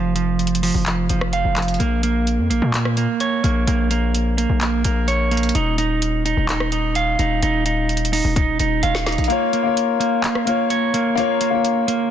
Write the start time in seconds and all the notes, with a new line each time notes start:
Already playing: F1 F3 F5
0.16 F3, closed hi-hat
0.39 closed hi-hat
0.47 closed hi-hat
0.55 closed hi-hat
0.63 F3, open hi-hat
0.74 F1
0.86 F3, clap, closed hi-hat
1.09 F1 F3, closed hi-hat
1.21 cross-stick
1.33 F5, closed hi-hat
1.45 F1
1.56 F3, clap, closed hi-hat
1.62 closed hi-hat
1.68 closed hi-hat
1.74 closed hi-hat
1.80 A#1 A#3, closed hi-hat
2.03 A#3, closed hi-hat
2.27 closed hi-hat
2.39 F2
2.50 A#1 A#3, closed hi-hat
2.62 A#2
2.74 A#3, clap, closed hi-hat
2.85 cross-stick
2.97 A#3, closed hi-hat
3.20 C#5, closed hi-hat
3.44 A#1 A#3, closed hi-hat
3.67 A#1 A#3, closed hi-hat
3.91 A#3, closed hi-hat
4.15 closed hi-hat
4.38 A#3, closed hi-hat
4.49 A#1
4.61 A#3, clap, closed hi-hat
4.84 A#1 A#3, closed hi-hat
5.08 C#5, closed hi-hat
5.31 A#3, closed hi-hat
5.37 closed hi-hat
5.43 closed hi-hat
5.49 closed hi-hat
5.55 D#1 D#4, closed hi-hat
5.78 D#4, closed hi-hat
6.02 closed hi-hat
6.25 D#4, closed hi-hat
6.37 D#1
6.49 D#4, clap, closed hi-hat
6.60 cross-stick
6.72 D#4, closed hi-hat
6.95 F5, closed hi-hat
7.19 D#1 D#4, closed hi-hat
7.42 D#1 D#4, closed hi-hat
7.66 D#4, closed hi-hat
7.89 closed hi-hat
7.97 closed hi-hat
8.05 closed hi-hat
8.13 D#4, open hi-hat
8.24 D#1
8.36 D#4, kick, closed hi-hat
8.59 D#1 D#4, closed hi-hat
8.83 D#1 F5, closed hi-hat
8.95 snare
9.06 D#4, snare, closed hi-hat
9.12 closed hi-hat
9.18 A#1, closed hi-hat
9.24 A#3, closed hi-hat
9.30 A#3 F4 C#5, closed hi-hat
9.53 A#3, closed hi-hat
9.63 A#3 F4
9.67 C#5
9.77 closed hi-hat
10.00 A#3, closed hi-hat
10.24 A#3, clap, closed hi-hat
10.35 cross-stick
10.45 A#3 F4, closed hi-hat
10.49 C#5
10.70 C#5, closed hi-hat
10.94 A#3, closed hi-hat
11.15 A#3 F4, closed hi-hat
11.19 C#5
11.41 A#3, closed hi-hat
11.50 A#3 F4
11.55 C#5
11.65 closed hi-hat
11.88 A#3, closed hi-hat